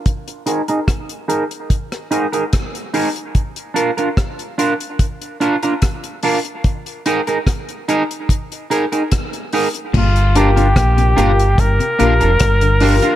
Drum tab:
CC |----------------|----------------|----------------|x---------------|
HH |xxxxxxxxxxxxxxox|xxxxxxxxxxxxxxox|xxxxxxxxxxxxxxox|-xxxxxxxxxxxxxox|
SD |----r----r--r---|----r-------r---|----r-------r---|----r-------r---|
BD |o---o---o---o---|o---o---o---o---|o---o---o---o---|o---o---o---o---|